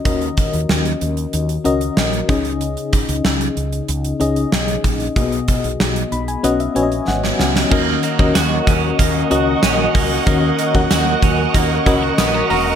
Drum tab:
CC |----------------|----------------|----------------|x---------------|
HH |xxxx-xxxxxxx-xxx|xxxx-xxxxxxx-xxx|xxxx-xxxxxxx----|--x-x-x-x-x-x-o-|
TB |----------------|----------------|----------------|----x-------x---|
SD |----o-------o---|----o-------o---|----o-------oooo|----o-------o---|
BD |o-o-----------o-|--o-----------o-|o-o-------------|o--o--o-o-----o-|

CC |----------------|
HH |x-x-x-x-x-x-x-o-|
TB |----x-------x---|
SD |----o-------o---|
BD |o--o--o-o-o-----|